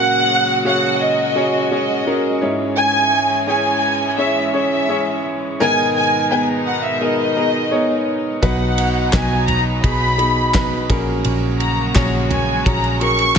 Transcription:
0.00 0.61 A#2 medium
0.00 2.39 C#3 medium
0.00 2.37 F#3 medium
0.00 8.38 G#3 medium
0.00 2.38 A#3 medium
0.00 0.60 C#4 medium
0.00 0.60 F#4 medium
0.00 2.39 F#4 loud
0.00 0.60 G#4 medium
0.00 0.60 A#4 medium
0.00 0.62 F#5 loud
0.65 1.32 C#4 medium
0.65 1.32 F#4 medium
0.65 1.32 G#4 medium
0.65 1.32 C#5 medium
0.65 0.99 F#5 loud
1.02 1.71 D#5 medium
1.36 1.69 C#4 medium
1.36 1.69 F#4 medium
1.36 1.69 G#4 medium
1.36 1.70 C#5 medium
1.71 2.05 C#4 medium
1.71 2.05 F#4 medium
1.71 2.05 G#4 medium
1.71 2.05 C#5 medium
1.71 2.39 D#5 medium
2.07 2.40 C#4 medium
2.07 2.42 F#4 medium
2.07 2.40 G#4 medium
2.07 2.42 A#4 medium
2.41 3.44 G#2 medium
2.41 5.57 E3 medium
2.41 3.42 C#4 medium
2.41 5.57 C#4 loud
2.41 3.42 E4 medium
2.41 3.42 G#4 medium
2.41 3.42 C#5 medium
2.77 3.44 G#5 loud
3.47 4.14 C#4 medium
3.47 4.15 E4 medium
3.47 4.15 G#4 medium
3.47 4.15 C#5 medium
3.47 4.15 G#5 loud
4.18 4.52 C#4 medium
4.18 4.52 E4 medium
4.18 4.52 G#4 medium
4.18 4.52 C#5 medium
4.18 4.54 E5 medium
4.54 4.87 C#4 medium
4.54 4.87 E4 medium
4.54 4.87 G#4 medium
4.54 4.87 C#5 medium
4.54 5.21 E5 medium
4.89 5.56 C#4 medium
4.89 5.56 E4 medium
4.89 5.56 G#4 medium
4.89 5.56 C#5 medium
5.60 6.62 G#2 medium
5.60 8.40 B2 medium
5.60 8.40 D#3 medium
5.60 6.62 D#3 medium
5.60 8.40 B3 medium
5.60 6.27 B3 loud
5.60 8.40 D#4 medium
5.60 6.27 D#4 medium
5.60 6.27 G#4 medium
5.60 6.27 A#4 loud
5.60 5.93 G#5 loud
5.95 6.28 G#5 loud
6.30 6.97 B3 medium
6.30 6.97 D#4 medium
6.30 6.97 G#4 medium
6.30 6.97 B4 medium
6.30 6.46 G#5 medium
6.66 6.83 F#5 medium
6.83 7.01 E5 medium
7.01 7.35 B3 medium
7.01 7.35 D#4 medium
7.01 7.34 G#4 medium
7.01 7.35 A#4 medium
7.01 8.07 D#5 medium
7.37 7.70 B3 medium
7.37 7.70 D#4 medium
7.37 7.70 G#4 medium
7.37 7.70 A#4 medium
7.71 8.38 B3 medium
7.71 8.38 D#4 medium
7.71 8.39 G#4 medium
7.71 8.38 C#5 medium
8.42 9.09 B1 loud
8.42 9.44 B2 medium
8.42 9.44 F#3 medium
8.42 10.88 F#3 medium
8.42 9.09 B3 medium
8.42 10.88 B3 medium
8.42 9.09 D#4 medium
8.42 10.88 D#4 medium
8.42 9.09 F#4 loud
8.42 9.09 B4 loud
8.42 9.09 F#5 medium
8.42 kick medium
8.42 ride medium
8.78 ride medium
9.12 9.80 B1 loud
9.12 9.80 B3 medium
9.12 9.79 D#4 medium
9.12 9.80 F#4 medium
9.12 9.80 B4 medium
9.12 9.48 G#5 medium
9.12 kick loud
9.12 snare loud
9.12 clap loud
9.12 ride medium
9.46 9.63 A#5 loud
9.46 floor tom medium
9.46 ride medium
9.82 10.86 B1 medium
9.82 10.17 B3 medium
9.82 10.17 D#4 medium
9.82 10.17 F#4 medium
9.82 10.17 G#4 medium
9.82 10.85 B5 loud
9.82 kick loud
9.82 ride medium
10.18 10.52 B3 medium
10.18 10.52 D#4 medium
10.18 10.52 F#4 medium
10.18 10.52 G#4 medium
10.18 ride medium
10.54 10.90 B3 medium
10.54 10.90 D#4 medium
10.54 10.88 F#4 medium
10.54 10.90 B4 medium
10.54 kick loud
10.54 snare loud
10.54 clap medium
10.54 ride medium
10.90 11.23 A#1 loud
10.90 11.91 A#2 medium
10.90 13.39 C#3 medium
10.90 13.39 F#3 medium
10.90 13.39 G#3 medium
10.90 13.39 A#3 medium
10.90 11.92 A#3 medium
10.90 11.90 C#4 medium
10.90 13.39 F#4 medium
10.90 11.90 F#4 medium
10.90 11.90 G#4 medium
10.90 11.90 A#4 loud
10.90 kick loud
10.90 ride medium
11.24 11.91 A#1 loud
11.24 ride medium
11.60 11.93 A#5 medium
11.60 ride medium
11.94 12.62 A#1 loud
11.94 12.62 C#4 medium
11.94 12.62 F#4 medium
11.94 12.62 G#4 medium
11.94 12.62 C#5 medium
11.94 12.12 A#5 medium
11.94 kick loud
11.94 snare loud
11.94 clap medium
11.94 ride medium
12.31 12.64 G#5 medium
12.31 floor tom medium
12.31 ride medium
12.66 13.33 A#1 loud
12.66 12.99 C#4 medium
12.66 12.99 F#4 medium
12.66 12.99 G#4 medium
12.66 12.99 C#5 medium
12.66 13.01 A#5 loud
12.66 kick loud
12.66 ride medium
12.84 ride soft
13.00 13.34 C#4 medium
13.00 13.35 F#4 medium
13.00 13.34 G#4 medium
13.00 13.35 A#4 medium
13.00 13.39 C#6 loud
13.00 ride medium
13.19 ride soft

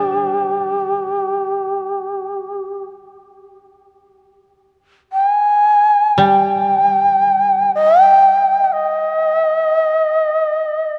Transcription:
0.00 2.52 G3 medium
0.00 2.09 D4 soft
0.00 2.86 G4 medium
5.13 5.29 G5 loud
5.29 6.21 G#5 loud
6.18 9.56 G3 medium
6.18 7.74 G5 medium
7.75 8.03 D#5 loud
8.03 8.64 G5 loud
8.64 8.74 G5 medium
8.72 10.98 D#5 loud

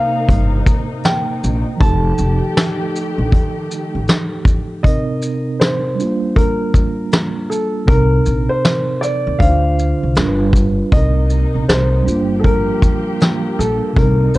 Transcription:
0.00 1.75 C3 medium
0.00 1.77 C3 medium
0.00 1.77 A#3 medium
0.00 1.77 D#4 medium
0.00 1.79 D#4 medium
0.00 1.79 C5 medium
0.00 0.63 F5 loud
0.29 0.60 G1 loud
0.29 kick medium
0.29 closed hi-hat medium
0.66 kick medium
0.66 closed hi-hat soft
0.66 shaker soft
1.03 1.83 G5 medium
1.03 snare loud
1.03 closed hi-hat medium
1.44 1.63 A#1 loud
1.44 shaker medium
1.77 4.81 D#3 medium
1.77 4.79 F3 medium
1.77 4.81 A3 medium
1.77 4.80 D#4 medium
1.77 4.81 G4 medium
1.77 4.04 A5 loud
1.77 kick loud
1.81 2.12 F1 loud
1.81 4.82 G4 medium
1.81 closed hi-hat medium
1.86 4.83 A4 medium
2.18 2.39 F1 loud
2.18 shaker soft
2.57 snare loud
2.57 closed hi-hat medium
2.96 closed hi-hat soft
2.96 shaker soft
3.18 3.30 A#1 medium
3.32 kick medium
3.32 closed hi-hat medium
3.71 shaker soft
3.95 4.06 A1 medium
4.07 snare loud
4.07 closed hi-hat medium
4.45 kick loud
4.45 shaker soft
4.83 5.98 C3 medium
4.83 5.98 C4 medium
4.83 5.99 D#4 medium
4.83 5.62 D#5 medium
4.83 kick loud
4.83 closed hi-hat medium
4.87 6.00 A#4 medium
5.22 shaker soft
5.60 6.32 C5 medium
5.60 snare loud
5.60 closed hi-hat medium
5.95 7.83 G3 medium
5.95 7.84 D4 medium
6.00 7.87 A#3 medium
6.00 7.86 F4 medium
6.00 closed hi-hat soft
6.00 shaker soft
6.36 7.54 A#4 medium
6.36 kick medium
6.36 closed hi-hat medium
6.74 kick medium
6.74 shaker soft
7.11 snare loud
7.11 closed hi-hat medium
7.50 7.89 A4 medium
7.50 shaker soft
7.86 8.20 C2 loud
7.86 9.36 C3 medium
7.86 9.38 C4 medium
7.86 8.52 A#4 medium
7.86 kick loud
7.86 closed hi-hat medium
7.92 9.39 D#4 medium
7.92 9.41 A#4 medium
8.26 8.46 A#1 medium
8.26 shaker soft
8.49 9.03 C5 loud
8.65 snare loud
8.65 closed hi-hat medium
9.01 9.41 D5 medium
9.01 snare soft
9.01 shaker soft
9.27 9.38 D#2 medium
9.39 9.91 D2 loud
9.39 10.16 D3 medium
9.39 10.16 D4 medium
9.39 9.50 D#4 soft
9.39 10.11 F5 medium
9.39 kick medium
9.39 closed hi-hat medium
9.44 10.18 C5 medium
9.48 10.18 F4 medium
9.79 shaker soft
10.03 10.18 C2 medium
10.15 10.79 G1 medium
10.15 10.92 G3 medium
10.15 10.93 D4 medium
10.15 10.94 F4 medium
10.15 snare loud
10.15 closed hi-hat medium
10.20 10.27 A#4 medium
10.27 10.97 B4 medium
10.53 kick medium
10.53 shaker soft
10.92 11.43 C2 loud
10.92 12.05 C3 medium
10.92 12.06 C3 medium
10.92 12.05 A#3 medium
10.92 12.07 C4 medium
10.92 12.05 D#4 medium
10.92 12.08 D#4 medium
10.92 11.64 D#5 loud
10.92 kick loud
10.92 closed hi-hat medium
10.97 12.08 A#4 medium
11.30 shaker soft
11.55 11.66 A#1 medium
11.68 12.00 C2 medium
11.68 12.41 C5 medium
11.68 snare loud
11.68 closed hi-hat medium
12.03 13.94 F3 medium
12.03 13.90 G3 medium
12.03 14.38 A#3 medium
12.03 13.92 D4 medium
12.03 13.94 G4 medium
12.07 12.69 G1 medium
12.07 13.93 F4 medium
12.07 closed hi-hat soft
12.07 shaker soft
12.11 13.95 A#3 medium
12.40 12.44 A4 medium
12.44 13.62 A#4 medium
12.44 kick medium
12.44 closed hi-hat medium
12.82 kick medium
12.82 closed hi-hat soft
12.82 shaker soft
13.20 snare loud
13.20 closed hi-hat medium
13.59 13.78 A#1 medium
13.59 13.98 A4 medium
13.59 shaker soft
13.93 14.28 C2 loud
13.93 14.38 C3 medium
13.93 14.38 C4 medium
13.93 14.38 D#4 medium
13.93 kick loud
13.97 14.38 D#4 medium
13.97 14.36 A#4 medium
13.97 closed hi-hat medium
14.02 14.38 A#4 medium
14.34 14.38 A#1 medium
14.34 shaker soft

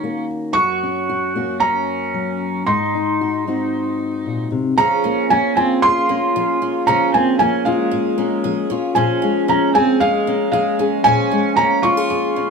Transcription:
0.00 0.56 D#3 medium
0.00 0.53 A#3 medium
0.00 0.25 C#4 medium
0.00 0.54 C#4 medium
0.00 1.09 F#4 medium
0.00 0.25 A#5 medium
0.53 2.64 F#2 medium
0.53 1.57 F#4 medium
0.53 1.63 C#6 loud
0.83 1.35 C#4 medium
1.09 1.37 F#4 medium
1.35 2.64 A#3 soft
1.35 2.65 C#4 medium
1.35 2.65 F#4 medium
1.60 2.62 C#4 medium
1.60 2.63 A#5 medium
2.14 2.64 F#3 medium
2.67 4.74 G#2 medium
2.67 4.47 D#4 medium
2.67 4.47 C6 medium
2.95 3.47 D#4 medium
3.21 3.47 F#4 medium
3.47 4.75 C4 soft
3.47 4.75 D#4 medium
3.47 4.76 F#4 medium
4.26 4.51 A#2 soft
4.52 4.78 C3 medium
4.78 5.25 C#3 medium
4.78 6.87 F3 medium
4.78 5.27 C#4 medium
4.78 5.82 G#4 medium
4.78 5.32 A#5 loud
5.04 7.14 A#3 medium
5.04 5.56 C#4 medium
5.30 5.78 F3 medium
5.30 6.09 A#3 medium
5.30 5.55 C#4 medium
5.30 6.10 C#4 medium
5.30 5.55 G#5 medium
5.56 5.80 C4 medium
5.56 6.61 C#4 medium
5.56 6.62 F4 medium
5.56 5.84 G#5 medium
5.82 6.30 G#2 medium
5.82 6.83 F4 medium
5.82 6.35 G#4 medium
5.82 6.90 C6 loud
6.09 7.40 A#3 medium
6.09 7.41 C#4 medium
6.36 6.83 F3 medium
6.36 6.88 G#4 medium
6.62 7.14 C#4 medium
6.62 7.67 F4 medium
6.87 7.35 C#3 medium
6.87 8.95 F3 medium
6.87 7.12 C#4 medium
6.87 7.91 G#4 medium
6.87 7.14 A#5 medium
7.12 9.23 A#3 medium
7.12 7.37 C4 medium
7.12 7.66 C#4 medium
7.12 7.38 G#5 medium
7.39 7.88 F3 medium
7.39 8.17 A#3 medium
7.39 7.64 C#4 medium
7.39 8.18 C#4 medium
7.39 7.66 G#5 medium
7.65 8.67 G#3 medium
7.65 8.70 C#4 medium
7.65 8.71 F4 medium
7.65 8.66 F5 medium
7.91 8.39 G#2 medium
7.91 8.44 G#4 medium
8.18 9.48 A#3 medium
8.18 9.49 C#4 medium
8.44 8.92 F3 medium
8.44 8.96 G#4 medium
8.70 9.22 C#4 medium
8.70 9.75 F4 medium
8.95 9.44 A#2 medium
8.95 11.05 F3 medium
8.95 9.46 C#4 medium
8.95 10.01 G#4 medium
8.95 9.44 G#5 medium
9.22 11.32 G#3 medium
9.22 9.75 C#4 medium
9.48 9.96 F3 medium
9.48 10.27 A#3 medium
9.48 9.73 C#4 medium
9.48 10.28 C#4 medium
9.48 9.73 A#5 medium
9.74 9.99 C4 medium
9.74 10.79 C#4 medium
9.74 10.80 G#4 medium
9.74 10.02 G#5 medium
10.00 10.48 F2 medium
10.00 10.49 G#3 medium
10.00 10.53 G#4 medium
10.00 10.49 F5 loud
10.27 11.57 A#3 medium
10.27 11.58 C#4 medium
10.52 11.00 F3 medium
10.52 11.01 G#3 medium
10.52 11.06 G#4 medium
10.52 11.06 F5 medium
10.79 11.31 C#4 medium
10.79 11.09 G#4 medium
11.04 11.53 A#2 medium
11.04 12.50 F3 medium
11.04 11.53 C#4 medium
11.04 12.10 G#4 medium
11.04 11.59 G#5 loud
11.32 12.50 G#3 medium
11.32 11.83 C#4 medium
11.56 12.05 F3 medium
11.56 12.36 A#3 medium
11.56 11.81 C#4 medium
11.56 12.37 C#4 medium
11.56 11.84 A#5 medium
11.82 12.50 C#4 medium
11.82 12.50 F4 medium
11.82 11.97 F4 medium
11.82 12.50 C#6 medium
11.97 12.50 G#4 medium
12.10 12.50 F2 medium
12.10 12.50 G#4 medium
12.36 12.50 A#3 medium
12.36 12.50 C#4 medium

